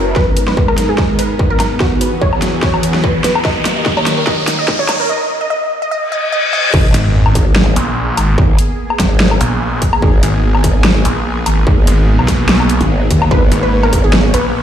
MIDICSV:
0, 0, Header, 1, 10, 480
1, 0, Start_track
1, 0, Key_signature, 5, "minor"
1, 0, Tempo, 410959
1, 188, Time_signature, 4, 2, 24, 8
1, 17086, End_track
2, 0, Start_track
2, 0, Title_t, "Synth pluck"
2, 0, Program_c, 0, 84
2, 0, Note_on_c, 0, 70, 90
2, 155, Note_off_c, 0, 70, 0
2, 187, Note_on_c, 0, 71, 98
2, 499, Note_off_c, 0, 71, 0
2, 557, Note_on_c, 0, 71, 87
2, 758, Note_off_c, 0, 71, 0
2, 797, Note_on_c, 0, 70, 93
2, 999, Note_off_c, 0, 70, 0
2, 1037, Note_on_c, 0, 68, 90
2, 1338, Note_off_c, 0, 68, 0
2, 1387, Note_on_c, 0, 71, 97
2, 1699, Note_off_c, 0, 71, 0
2, 1757, Note_on_c, 0, 70, 96
2, 2058, Note_off_c, 0, 70, 0
2, 2106, Note_on_c, 0, 66, 88
2, 2314, Note_off_c, 0, 66, 0
2, 2347, Note_on_c, 0, 71, 91
2, 2554, Note_off_c, 0, 71, 0
2, 2587, Note_on_c, 0, 73, 90
2, 3002, Note_off_c, 0, 73, 0
2, 3067, Note_on_c, 0, 73, 90
2, 3482, Note_off_c, 0, 73, 0
2, 3547, Note_on_c, 0, 71, 89
2, 3754, Note_off_c, 0, 71, 0
2, 3787, Note_on_c, 0, 71, 91
2, 3994, Note_off_c, 0, 71, 0
2, 4026, Note_on_c, 0, 75, 93
2, 4339, Note_off_c, 0, 75, 0
2, 4397, Note_on_c, 0, 75, 81
2, 4598, Note_off_c, 0, 75, 0
2, 4638, Note_on_c, 0, 73, 87
2, 4839, Note_off_c, 0, 73, 0
2, 4877, Note_on_c, 0, 70, 84
2, 4969, Note_off_c, 0, 70, 0
2, 4986, Note_on_c, 0, 75, 92
2, 5299, Note_off_c, 0, 75, 0
2, 5357, Note_on_c, 0, 75, 86
2, 5559, Note_off_c, 0, 75, 0
2, 5598, Note_on_c, 0, 73, 84
2, 5799, Note_off_c, 0, 73, 0
2, 5838, Note_on_c, 0, 70, 95
2, 5930, Note_off_c, 0, 70, 0
2, 5947, Note_on_c, 0, 75, 102
2, 6259, Note_off_c, 0, 75, 0
2, 6318, Note_on_c, 0, 75, 91
2, 6410, Note_off_c, 0, 75, 0
2, 6427, Note_on_c, 0, 75, 99
2, 6739, Note_off_c, 0, 75, 0
2, 6798, Note_on_c, 0, 75, 91
2, 6890, Note_off_c, 0, 75, 0
2, 6908, Note_on_c, 0, 75, 98
2, 7130, Note_off_c, 0, 75, 0
2, 7147, Note_on_c, 0, 75, 105
2, 7370, Note_off_c, 0, 75, 0
2, 7387, Note_on_c, 0, 75, 99
2, 7610, Note_off_c, 0, 75, 0
2, 7627, Note_on_c, 0, 75, 104
2, 7850, Note_off_c, 0, 75, 0
2, 15547, Note_on_c, 0, 71, 102
2, 15859, Note_off_c, 0, 71, 0
2, 15918, Note_on_c, 0, 71, 92
2, 16119, Note_off_c, 0, 71, 0
2, 16157, Note_on_c, 0, 70, 95
2, 16359, Note_off_c, 0, 70, 0
2, 16398, Note_on_c, 0, 68, 95
2, 16698, Note_off_c, 0, 68, 0
2, 16747, Note_on_c, 0, 71, 100
2, 17059, Note_off_c, 0, 71, 0
2, 17086, End_track
3, 0, Start_track
3, 0, Title_t, "Supersaw synth"
3, 0, Program_c, 1, 81
3, 0, Note_on_c, 1, 61, 85
3, 0, Note_on_c, 1, 66, 72
3, 0, Note_on_c, 1, 70, 77
3, 149, Note_off_c, 1, 70, 0
3, 168, Note_off_c, 1, 61, 0
3, 168, Note_off_c, 1, 66, 0
3, 186, Note_on_c, 1, 44, 81
3, 186, Note_on_c, 1, 70, 94
3, 187, Note_on_c, 1, 56, 76
3, 187, Note_on_c, 1, 59, 78
3, 187, Note_on_c, 1, 63, 75
3, 2088, Note_off_c, 1, 44, 0
3, 2088, Note_off_c, 1, 56, 0
3, 2088, Note_off_c, 1, 63, 0
3, 2088, Note_off_c, 1, 70, 0
3, 2107, Note_on_c, 1, 52, 76
3, 2108, Note_on_c, 1, 40, 86
3, 2108, Note_on_c, 1, 66, 78
3, 2108, Note_on_c, 1, 68, 92
3, 3989, Note_off_c, 1, 59, 0
3, 4008, Note_off_c, 1, 52, 0
3, 4009, Note_off_c, 1, 40, 0
3, 4009, Note_off_c, 1, 66, 0
3, 4009, Note_off_c, 1, 68, 0
3, 4026, Note_on_c, 1, 39, 84
3, 4026, Note_on_c, 1, 58, 75
3, 4027, Note_on_c, 1, 51, 78
3, 4027, Note_on_c, 1, 67, 76
3, 4027, Note_on_c, 1, 70, 94
3, 5928, Note_off_c, 1, 39, 0
3, 5928, Note_off_c, 1, 51, 0
3, 5928, Note_off_c, 1, 58, 0
3, 5928, Note_off_c, 1, 67, 0
3, 5928, Note_off_c, 1, 70, 0
3, 7868, Note_on_c, 1, 58, 82
3, 7868, Note_on_c, 1, 59, 80
3, 7868, Note_on_c, 1, 68, 94
3, 15527, Note_off_c, 1, 68, 0
3, 15547, Note_on_c, 1, 73, 94
3, 17086, Note_off_c, 1, 58, 0
3, 17086, Note_off_c, 1, 59, 0
3, 17086, Note_off_c, 1, 73, 0
3, 17086, End_track
4, 0, Start_track
4, 0, Title_t, "Detuned saw bass"
4, 0, Program_c, 2, 39
4, 8107, Note_on_c, 2, 32, 98
4, 8330, Note_off_c, 2, 32, 0
4, 8347, Note_on_c, 2, 32, 101
4, 8570, Note_off_c, 2, 32, 0
4, 9067, Note_on_c, 2, 34, 98
4, 9530, Note_off_c, 2, 34, 0
4, 9547, Note_on_c, 2, 32, 96
4, 9770, Note_off_c, 2, 32, 0
4, 10987, Note_on_c, 2, 34, 97
4, 11450, Note_off_c, 2, 34, 0
4, 11948, Note_on_c, 2, 32, 101
4, 12170, Note_off_c, 2, 32, 0
4, 12187, Note_on_c, 2, 32, 101
4, 12410, Note_off_c, 2, 32, 0
4, 12907, Note_on_c, 2, 34, 97
4, 13370, Note_off_c, 2, 34, 0
4, 13388, Note_on_c, 2, 32, 98
4, 13610, Note_off_c, 2, 32, 0
4, 13867, Note_on_c, 2, 32, 95
4, 14217, Note_off_c, 2, 32, 0
4, 14238, Note_on_c, 2, 35, 96
4, 14937, Note_off_c, 2, 35, 0
4, 15787, Note_on_c, 2, 32, 97
4, 16010, Note_off_c, 2, 32, 0
4, 16027, Note_on_c, 2, 32, 101
4, 16250, Note_off_c, 2, 32, 0
4, 16748, Note_on_c, 2, 34, 97
4, 17086, Note_off_c, 2, 34, 0
4, 17086, End_track
5, 0, Start_track
5, 0, Title_t, "Wobble bass"
5, 0, Program_c, 3, 39
5, 0, Note_on_c, 3, 30, 88
5, 165, Note_off_c, 3, 30, 0
5, 7868, Note_on_c, 3, 32, 92
5, 8091, Note_off_c, 3, 32, 0
5, 8588, Note_on_c, 3, 32, 97
5, 9050, Note_off_c, 3, 32, 0
5, 9788, Note_on_c, 3, 32, 94
5, 10010, Note_off_c, 3, 32, 0
5, 10508, Note_on_c, 3, 32, 98
5, 10970, Note_off_c, 3, 32, 0
5, 11708, Note_on_c, 3, 32, 96
5, 11930, Note_off_c, 3, 32, 0
5, 12428, Note_on_c, 3, 32, 98
5, 12890, Note_off_c, 3, 32, 0
5, 13628, Note_on_c, 3, 32, 96
5, 13850, Note_off_c, 3, 32, 0
5, 14958, Note_on_c, 3, 32, 99
5, 15290, Note_off_c, 3, 32, 0
5, 15308, Note_on_c, 3, 39, 97
5, 15531, Note_off_c, 3, 39, 0
5, 15548, Note_on_c, 3, 32, 97
5, 15770, Note_off_c, 3, 32, 0
5, 16268, Note_on_c, 3, 32, 97
5, 16730, Note_off_c, 3, 32, 0
5, 17086, End_track
6, 0, Start_track
6, 0, Title_t, "Noise sweep"
6, 0, Program_c, 4, 103
6, 0, Note_on_c, 4, 60, 70
6, 188, Note_off_c, 4, 60, 0
6, 17086, End_track
7, 0, Start_track
7, 0, Title_t, "Reverse cymbal"
7, 0, Program_c, 5, 119
7, 6908, Note_on_c, 5, 60, 81
7, 7868, Note_off_c, 5, 60, 0
7, 17086, End_track
8, 0, Start_track
8, 0, Title_t, "Riser"
8, 0, Program_c, 6, 103
8, 188, Note_on_c, 6, 60, 77
8, 5948, Note_off_c, 6, 60, 0
8, 17086, End_track
9, 0, Start_track
9, 0, Title_t, "Sub drop"
9, 0, Program_c, 7, 103
9, 7868, Note_on_c, 7, 60, 76
9, 9788, Note_off_c, 7, 60, 0
9, 17086, End_track
10, 0, Start_track
10, 0, Title_t, "Drums"
10, 188, Note_on_c, 9, 36, 97
10, 188, Note_on_c, 9, 38, 45
10, 304, Note_off_c, 9, 38, 0
10, 305, Note_off_c, 9, 36, 0
10, 427, Note_on_c, 9, 42, 81
10, 544, Note_off_c, 9, 42, 0
10, 558, Note_on_c, 9, 38, 45
10, 668, Note_on_c, 9, 36, 98
10, 675, Note_off_c, 9, 38, 0
10, 785, Note_off_c, 9, 36, 0
10, 799, Note_on_c, 9, 77, 54
10, 908, Note_on_c, 9, 38, 50
10, 908, Note_on_c, 9, 42, 80
10, 915, Note_off_c, 9, 77, 0
10, 1024, Note_off_c, 9, 38, 0
10, 1024, Note_off_c, 9, 42, 0
10, 1148, Note_on_c, 9, 36, 93
10, 1148, Note_on_c, 9, 38, 55
10, 1264, Note_off_c, 9, 38, 0
10, 1265, Note_off_c, 9, 36, 0
10, 1387, Note_on_c, 9, 42, 82
10, 1504, Note_off_c, 9, 42, 0
10, 1628, Note_on_c, 9, 36, 96
10, 1745, Note_off_c, 9, 36, 0
10, 1868, Note_on_c, 9, 38, 58
10, 1868, Note_on_c, 9, 42, 81
10, 1868, Note_on_c, 9, 77, 55
10, 1984, Note_off_c, 9, 38, 0
10, 1984, Note_off_c, 9, 42, 0
10, 1984, Note_off_c, 9, 77, 0
10, 2107, Note_on_c, 9, 38, 59
10, 2108, Note_on_c, 9, 36, 95
10, 2224, Note_off_c, 9, 38, 0
10, 2225, Note_off_c, 9, 36, 0
10, 2348, Note_on_c, 9, 42, 82
10, 2464, Note_off_c, 9, 42, 0
10, 2588, Note_on_c, 9, 36, 99
10, 2705, Note_off_c, 9, 36, 0
10, 2718, Note_on_c, 9, 77, 53
10, 2827, Note_on_c, 9, 38, 66
10, 2827, Note_on_c, 9, 42, 82
10, 2835, Note_off_c, 9, 77, 0
10, 2944, Note_off_c, 9, 38, 0
10, 2944, Note_off_c, 9, 42, 0
10, 3067, Note_on_c, 9, 38, 67
10, 3068, Note_on_c, 9, 36, 98
10, 3184, Note_off_c, 9, 38, 0
10, 3185, Note_off_c, 9, 36, 0
10, 3198, Note_on_c, 9, 77, 56
10, 3308, Note_on_c, 9, 42, 83
10, 3315, Note_off_c, 9, 77, 0
10, 3424, Note_off_c, 9, 42, 0
10, 3438, Note_on_c, 9, 38, 64
10, 3548, Note_on_c, 9, 36, 97
10, 3555, Note_off_c, 9, 38, 0
10, 3665, Note_off_c, 9, 36, 0
10, 3788, Note_on_c, 9, 38, 71
10, 3788, Note_on_c, 9, 42, 80
10, 3905, Note_off_c, 9, 38, 0
10, 3905, Note_off_c, 9, 42, 0
10, 3919, Note_on_c, 9, 77, 82
10, 4027, Note_on_c, 9, 38, 74
10, 4028, Note_on_c, 9, 36, 102
10, 4035, Note_off_c, 9, 77, 0
10, 4144, Note_off_c, 9, 38, 0
10, 4145, Note_off_c, 9, 36, 0
10, 4268, Note_on_c, 9, 38, 79
10, 4268, Note_on_c, 9, 42, 82
10, 4384, Note_off_c, 9, 38, 0
10, 4384, Note_off_c, 9, 42, 0
10, 4508, Note_on_c, 9, 36, 100
10, 4508, Note_on_c, 9, 38, 76
10, 4624, Note_off_c, 9, 38, 0
10, 4625, Note_off_c, 9, 36, 0
10, 4639, Note_on_c, 9, 77, 52
10, 4747, Note_on_c, 9, 38, 83
10, 4747, Note_on_c, 9, 42, 81
10, 4755, Note_off_c, 9, 77, 0
10, 4864, Note_off_c, 9, 38, 0
10, 4864, Note_off_c, 9, 42, 0
10, 4988, Note_on_c, 9, 36, 97
10, 4988, Note_on_c, 9, 38, 83
10, 5104, Note_off_c, 9, 38, 0
10, 5105, Note_off_c, 9, 36, 0
10, 5227, Note_on_c, 9, 38, 88
10, 5227, Note_on_c, 9, 42, 84
10, 5344, Note_off_c, 9, 38, 0
10, 5344, Note_off_c, 9, 42, 0
10, 5468, Note_on_c, 9, 36, 100
10, 5468, Note_on_c, 9, 38, 87
10, 5585, Note_off_c, 9, 36, 0
10, 5585, Note_off_c, 9, 38, 0
10, 5708, Note_on_c, 9, 38, 89
10, 5708, Note_on_c, 9, 42, 84
10, 5708, Note_on_c, 9, 77, 52
10, 5824, Note_off_c, 9, 38, 0
10, 5824, Note_off_c, 9, 42, 0
10, 5824, Note_off_c, 9, 77, 0
10, 7868, Note_on_c, 9, 36, 127
10, 7868, Note_on_c, 9, 49, 104
10, 7985, Note_off_c, 9, 36, 0
10, 7985, Note_off_c, 9, 49, 0
10, 8108, Note_on_c, 9, 42, 83
10, 8225, Note_off_c, 9, 42, 0
10, 8479, Note_on_c, 9, 77, 55
10, 8588, Note_on_c, 9, 36, 67
10, 8588, Note_on_c, 9, 42, 84
10, 8596, Note_off_c, 9, 77, 0
10, 8705, Note_off_c, 9, 36, 0
10, 8705, Note_off_c, 9, 42, 0
10, 8827, Note_on_c, 9, 38, 118
10, 8944, Note_off_c, 9, 38, 0
10, 9068, Note_on_c, 9, 42, 88
10, 9185, Note_off_c, 9, 42, 0
10, 9548, Note_on_c, 9, 42, 83
10, 9548, Note_on_c, 9, 77, 57
10, 9664, Note_off_c, 9, 42, 0
10, 9664, Note_off_c, 9, 77, 0
10, 9788, Note_on_c, 9, 36, 123
10, 9905, Note_off_c, 9, 36, 0
10, 10028, Note_on_c, 9, 42, 84
10, 10144, Note_off_c, 9, 42, 0
10, 10398, Note_on_c, 9, 77, 54
10, 10508, Note_on_c, 9, 36, 67
10, 10508, Note_on_c, 9, 38, 66
10, 10508, Note_on_c, 9, 42, 83
10, 10515, Note_off_c, 9, 77, 0
10, 10625, Note_off_c, 9, 36, 0
10, 10625, Note_off_c, 9, 38, 0
10, 10625, Note_off_c, 9, 42, 0
10, 10748, Note_on_c, 9, 38, 127
10, 10865, Note_off_c, 9, 38, 0
10, 10879, Note_on_c, 9, 77, 58
10, 10987, Note_on_c, 9, 42, 85
10, 10995, Note_off_c, 9, 77, 0
10, 11104, Note_off_c, 9, 42, 0
10, 11467, Note_on_c, 9, 42, 85
10, 11468, Note_on_c, 9, 36, 64
10, 11584, Note_off_c, 9, 42, 0
10, 11585, Note_off_c, 9, 36, 0
10, 11598, Note_on_c, 9, 77, 83
10, 11708, Note_on_c, 9, 36, 127
10, 11715, Note_off_c, 9, 77, 0
10, 11825, Note_off_c, 9, 36, 0
10, 11947, Note_on_c, 9, 42, 81
10, 12064, Note_off_c, 9, 42, 0
10, 12318, Note_on_c, 9, 77, 52
10, 12427, Note_on_c, 9, 42, 81
10, 12428, Note_on_c, 9, 36, 68
10, 12435, Note_off_c, 9, 77, 0
10, 12544, Note_off_c, 9, 42, 0
10, 12545, Note_off_c, 9, 36, 0
10, 12667, Note_on_c, 9, 38, 127
10, 12784, Note_off_c, 9, 38, 0
10, 12907, Note_on_c, 9, 42, 84
10, 13024, Note_off_c, 9, 42, 0
10, 13387, Note_on_c, 9, 42, 84
10, 13387, Note_on_c, 9, 77, 52
10, 13504, Note_off_c, 9, 42, 0
10, 13504, Note_off_c, 9, 77, 0
10, 13628, Note_on_c, 9, 36, 127
10, 13745, Note_off_c, 9, 36, 0
10, 13867, Note_on_c, 9, 42, 80
10, 13984, Note_off_c, 9, 42, 0
10, 14238, Note_on_c, 9, 77, 50
10, 14348, Note_on_c, 9, 36, 66
10, 14348, Note_on_c, 9, 38, 65
10, 14348, Note_on_c, 9, 42, 77
10, 14355, Note_off_c, 9, 77, 0
10, 14464, Note_off_c, 9, 38, 0
10, 14464, Note_off_c, 9, 42, 0
10, 14465, Note_off_c, 9, 36, 0
10, 14587, Note_on_c, 9, 38, 127
10, 14704, Note_off_c, 9, 38, 0
10, 14718, Note_on_c, 9, 77, 54
10, 14827, Note_on_c, 9, 42, 81
10, 14835, Note_off_c, 9, 77, 0
10, 14944, Note_off_c, 9, 42, 0
10, 14958, Note_on_c, 9, 42, 38
10, 15075, Note_off_c, 9, 42, 0
10, 15307, Note_on_c, 9, 42, 81
10, 15308, Note_on_c, 9, 36, 66
10, 15424, Note_off_c, 9, 42, 0
10, 15425, Note_off_c, 9, 36, 0
10, 15438, Note_on_c, 9, 77, 78
10, 15548, Note_on_c, 9, 36, 123
10, 15555, Note_off_c, 9, 77, 0
10, 15665, Note_off_c, 9, 36, 0
10, 15787, Note_on_c, 9, 42, 79
10, 15904, Note_off_c, 9, 42, 0
10, 16158, Note_on_c, 9, 77, 50
10, 16267, Note_on_c, 9, 42, 78
10, 16268, Note_on_c, 9, 36, 67
10, 16275, Note_off_c, 9, 77, 0
10, 16384, Note_off_c, 9, 42, 0
10, 16385, Note_off_c, 9, 36, 0
10, 16507, Note_on_c, 9, 38, 124
10, 16624, Note_off_c, 9, 38, 0
10, 16747, Note_on_c, 9, 42, 80
10, 16864, Note_off_c, 9, 42, 0
10, 17086, End_track
0, 0, End_of_file